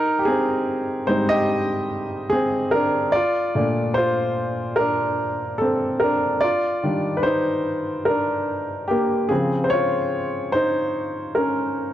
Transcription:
0.00 0.18 D#4 medium
0.00 0.20 A#4 loud
0.19 0.26 G4 medium
0.25 1.05 C4 medium
0.25 1.10 G#4 medium
1.07 2.27 G#2 medium
1.07 2.28 G3 soft
1.07 2.28 C4 medium
1.07 1.29 D#4 medium
1.07 1.28 C5 medium
1.29 2.28 G4 medium
1.29 2.34 D#5 loud
2.30 2.70 C4 medium
2.30 2.73 G#4 medium
2.71 2.83 D4 medium
2.71 2.81 A#4 medium
3.12 3.93 F4 medium
3.12 3.98 D5 loud
3.55 4.74 A#2 medium
3.55 4.74 A3 soft
3.55 4.75 D4 medium
3.94 4.75 F4 medium
3.94 4.73 C5 medium
4.76 5.57 D4 medium
4.76 5.62 A#4 medium
5.58 5.99 C4 medium
5.58 5.97 A4 medium
6.00 6.40 D4 medium
6.00 6.43 A#4 medium
6.41 7.15 F4 medium
6.41 7.13 D5 loud
6.83 9.26 D#3 medium
6.83 9.26 G3 soft
6.83 8.07 D4 medium
7.17 7.24 B4 medium
7.23 8.04 D#4 medium
7.23 8.02 C5 medium
8.05 8.86 D4 medium
8.05 8.91 A#4 medium
8.88 9.28 A#3 medium
8.88 9.31 G4 medium
9.29 9.86 C#3 medium
9.29 9.86 F3 soft
9.29 9.63 C4 medium
9.29 9.65 G#4 medium
9.64 9.71 C5 medium
9.70 10.50 F4 medium
9.70 10.55 C#5 medium
10.52 11.32 D#4 medium
10.52 11.31 C5 medium
11.35 11.93 C#4 medium
11.35 11.93 A#4 medium

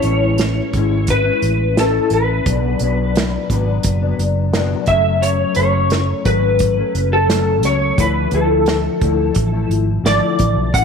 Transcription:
0.00 0.59 A1 medium
0.00 0.73 A2 medium
0.00 1.13 C#5 medium
0.00 closed hi-hat medium
0.05 0.73 G#3 medium
0.05 0.74 C#4 medium
0.05 0.75 E4 medium
0.38 snare loud
0.38 closed hi-hat medium
0.73 1.29 G#1 medium
0.73 1.25 G#3 medium
0.73 1.24 C#4 medium
0.73 1.23 E4 medium
0.73 kick medium
0.73 closed hi-hat medium
1.07 1.80 B4 medium
1.07 kick medium
1.07 closed hi-hat medium
1.24 1.78 G#3 soft
1.24 1.76 C#4 soft
1.24 1.76 E4 soft
1.42 1.98 A1 medium
1.42 closed hi-hat medium
1.76 2.45 A2 medium
1.76 2.46 C#4 medium
1.76 2.46 E4 medium
1.76 2.13 A4 medium
1.76 snare medium
1.76 closed hi-hat medium
2.10 2.39 A1 medium
2.10 4.16 B4 medium
2.10 closed hi-hat medium
2.46 2.74 B1 medium
2.46 2.79 B2 medium
2.46 2.80 F#3 medium
2.46 2.81 B3 medium
2.46 2.82 D4 medium
2.46 kick loud
2.46 closed hi-hat medium
2.79 3.36 B1 medium
2.79 3.49 B2 medium
2.79 3.50 F#3 medium
2.79 3.51 B3 medium
2.79 closed hi-hat medium
2.83 3.51 D4 medium
3.15 snare loud
3.15 closed hi-hat medium
3.50 3.77 G#1 medium
3.50 4.02 B2 medium
3.50 4.02 F#3 medium
3.50 4.01 B3 medium
3.50 4.00 D4 medium
3.50 kick medium
3.50 closed hi-hat medium
3.83 4.12 F#1 loud
3.83 kick medium
3.83 closed hi-hat medium
4.02 4.52 F#3 soft
4.02 4.52 B3 medium
4.02 4.53 D4 medium
4.18 4.74 F#1 medium
4.18 closed hi-hat medium
4.52 4.87 B2 medium
4.52 4.87 F#3 medium
4.52 4.88 B3 medium
4.52 4.88 D4 medium
4.52 snare loud
4.52 closed hi-hat medium
4.86 5.43 F#1 medium
4.86 5.55 F#2 medium
4.86 5.56 F#3 medium
4.86 5.57 A3 medium
4.86 5.57 C#4 medium
4.86 5.23 E5 loud
4.86 kick medium
4.86 closed hi-hat medium
5.22 5.54 C#5 loud
5.22 closed hi-hat medium
5.55 6.12 F#1 medium
5.55 6.24 F#2 medium
5.55 6.25 F#3 medium
5.55 6.27 A3 medium
5.55 6.27 C#4 medium
5.55 6.25 C#5 medium
5.55 closed hi-hat medium
5.90 snare loud
5.90 closed hi-hat medium
6.25 6.81 G#1 medium
6.25 6.77 F#2 medium
6.25 6.78 F#3 medium
6.25 6.77 A3 medium
6.25 6.76 C#4 medium
6.25 7.08 B4 medium
6.25 kick medium
6.25 closed hi-hat medium
6.59 kick medium
6.59 closed hi-hat medium
6.77 7.27 F#3 soft
6.77 7.28 A3 soft
6.77 7.28 C#4 medium
6.95 7.64 F#1 medium
6.95 closed hi-hat medium
7.13 7.66 A4 medium
7.27 7.97 F#2 medium
7.27 7.97 F#3 medium
7.27 7.98 A3 medium
7.27 7.98 C#4 medium
7.27 snare loud
7.27 closed hi-hat medium
7.63 7.91 C#2 medium
7.63 8.00 C#5 medium
7.63 snare soft
7.63 closed hi-hat medium
7.97 8.26 D2 medium
7.97 8.30 D3 medium
7.97 8.31 F3 medium
7.97 8.32 A3 medium
7.97 8.33 E4 medium
7.97 8.35 B4 medium
7.97 kick loud
7.97 closed hi-hat medium
8.31 8.87 D2 loud
8.31 9.00 D3 medium
8.31 9.01 F3 medium
8.31 9.02 A3 medium
8.31 9.04 E4 medium
8.31 9.68 A4 medium
8.31 closed hi-hat medium
8.66 snare loud
8.66 closed hi-hat medium
9.01 9.29 D2 medium
9.01 9.53 D3 medium
9.01 9.53 F3 medium
9.01 9.53 A3 medium
9.01 9.51 E4 medium
9.01 kick medium
9.01 closed hi-hat medium
9.35 9.64 A1 medium
9.35 kick medium
9.35 closed hi-hat medium
9.52 10.03 F3 soft
9.52 10.03 A3 medium
9.52 10.04 E4 medium
9.69 9.97 G#1 medium
9.69 closed hi-hat medium
10.03 10.18 G#1 medium
10.03 10.73 D3 medium
10.03 10.73 F3 medium
10.03 10.74 A3 medium
10.03 10.75 E4 medium
10.03 10.71 D5 medium
10.03 snare loud
10.03 closed hi-hat medium
10.39 10.53 A1 medium
10.39 kick medium
10.39 closed hi-hat medium
10.55 10.70 B1 medium
10.73 10.85 A1 medium
10.73 10.85 A2 medium
10.73 10.85 G#3 medium
10.73 10.85 C#4 medium
10.73 10.85 E4 medium
10.73 10.85 F#5 loud
10.73 kick loud
10.73 closed hi-hat medium

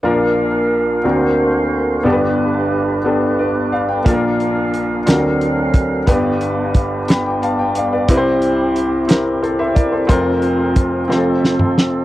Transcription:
0.03 1.00 A#1 soft
0.03 1.00 A#2 soft
0.03 0.96 A#3 medium
0.03 1.04 A#3 soft
0.03 0.96 D4 medium
0.03 1.03 D4 soft
0.03 4.02 D4 soft
0.03 1.03 F4 soft
0.03 0.96 F4 medium
0.03 2.03 A#4 medium
0.03 1.04 A#4 medium
0.03 0.97 A#4 medium
0.03 2.03 F5 soft
1.04 2.01 D2 soft
1.04 2.01 D3 soft
1.04 2.05 A#3 medium
1.04 1.97 C4 soft
1.04 2.05 C4 soft
1.04 1.97 D4 soft
1.04 4.03 D4 soft
1.04 1.97 F#4 soft
1.04 2.04 F#4 soft
1.04 2.05 F#4 soft
1.04 1.97 A#4 medium
1.04 2.04 C5 medium
2.03 4.02 G1 medium
2.03 4.02 G2 medium
2.03 2.97 B3 medium
2.03 4.05 B3 medium
2.03 2.97 D4 medium
2.03 2.98 G4 medium
2.03 4.05 G4 soft
2.03 2.12 A4 medium
2.03 4.05 B4 medium
2.12 3.01 B4 medium
3.04 3.97 B3 soft
3.04 3.98 D4 soft
3.04 3.98 G4 soft
3.04 3.98 A4 medium
3.39 3.71 B4 soft
3.39 3.71 D5 soft
3.72 3.89 D5 soft
3.72 3.88 F5 medium
3.89 4.21 G5 soft
4.04 5.03 A#1 medium
4.04 5.02 A#2 medium
4.04 4.98 A#3 medium
4.04 4.98 D4 medium
4.04 5.06 D4 soft
4.04 4.99 F4 medium
4.04 4.13 A4 medium
4.04 5.07 A#4 medium
4.04 6.06 F5 soft
4.04 kick medium
4.04 closed hi-hat medium
4.13 5.02 A#4 medium
4.40 closed hi-hat soft
4.74 closed hi-hat soft
5.06 6.04 D2 soft
5.06 6.04 D3 soft
5.06 6.07 F#3 medium
5.06 5.99 C4 soft
5.06 6.07 C4 soft
5.06 5.99 D4 soft
5.06 8.06 D4 soft
5.06 5.14 F4 soft
5.06 6.00 A#4 medium
5.06 6.07 A#4 medium
5.06 snare medium
5.06 closed hi-hat medium
5.13 6.03 F#4 soft
5.41 closed hi-hat soft
5.74 kick medium
5.74 closed hi-hat soft
6.06 8.05 G1 medium
6.06 8.05 G2 medium
6.06 7.00 B3 medium
6.06 8.07 B3 soft
6.06 7.00 D4 medium
6.06 7.00 G4 medium
6.06 10.06 G4 medium
6.06 7.01 B4 medium
6.06 kick medium
6.06 closed hi-hat medium
6.41 closed hi-hat soft
6.74 kick medium
6.74 closed hi-hat soft
7.08 7.25 G5 soft
7.08 7.24 B5 soft
7.08 snare medium
7.08 closed hi-hat medium
7.26 7.41 G5 medium
7.42 7.58 F5 soft
7.42 7.58 A5 medium
7.42 closed hi-hat soft
7.59 7.75 G5 medium
7.75 7.91 D5 soft
7.75 7.92 F5 soft
7.75 closed hi-hat medium
7.93 8.09 B4 soft
7.93 8.24 D5 soft
8.08 10.06 C2 medium
8.08 10.06 C3 medium
8.08 9.01 C4 medium
8.08 11.08 C4 medium
8.08 9.02 E4 medium
8.08 10.09 E4 soft
8.08 9.02 G4 medium
8.08 8.16 B4 medium
8.08 kick medium
8.08 closed hi-hat medium
8.17 9.06 C5 medium
8.42 closed hi-hat soft
8.76 closed hi-hat soft
9.07 10.01 C4 medium
9.07 10.01 E4 soft
9.07 10.02 G4 soft
9.07 9.43 A#4 medium
9.07 snare medium
9.07 closed hi-hat medium
9.43 9.59 A4 soft
9.43 9.58 C5 soft
9.43 closed hi-hat soft
9.59 9.76 C5 soft
9.59 9.75 E5 medium
9.75 9.92 A#4 soft
9.75 9.91 D5 medium
9.75 kick medium
9.75 closed hi-hat soft
9.92 10.25 A4 soft
9.92 10.07 C5 soft
10.07 11.05 F1 medium
10.07 11.06 F2 medium
10.07 11.01 C4 medium
10.07 11.08 F4 soft
10.07 11.01 F4 medium
10.07 11.08 A#4 medium
10.07 11.02 A#4 medium
10.07 11.02 C5 medium
10.07 kick medium
10.07 closed hi-hat medium
10.42 closed hi-hat soft
10.76 kick medium
10.76 closed hi-hat soft
11.08 12.05 F1 medium
11.08 12.05 F2 medium
11.08 12.02 C4 medium
11.08 12.05 C4 medium
11.08 12.02 F4 soft
11.08 12.05 F4 soft
11.08 11.16 G4 soft
11.08 12.05 A4 medium
11.08 12.03 C5 medium
11.08 snare soft
11.16 12.05 A4 soft
11.44 snare medium
11.59 mid tom soft
11.78 snare medium

